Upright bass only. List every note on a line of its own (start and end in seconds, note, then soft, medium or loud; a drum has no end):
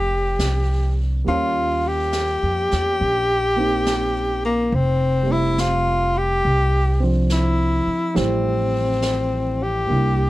0.00 0.35 F1 medium
0.39 1.22 C2 medium
1.27 2.38 D#2 medium
2.43 2.69 F2 soft
2.72 2.98 E2 medium
3.01 4.68 A#1 medium
4.72 6.40 F1 medium
6.45 7.83 C2 medium
7.87 muted upright bass stroke soft
8.17 9.86 A1 medium
9.90 10.30 C2 medium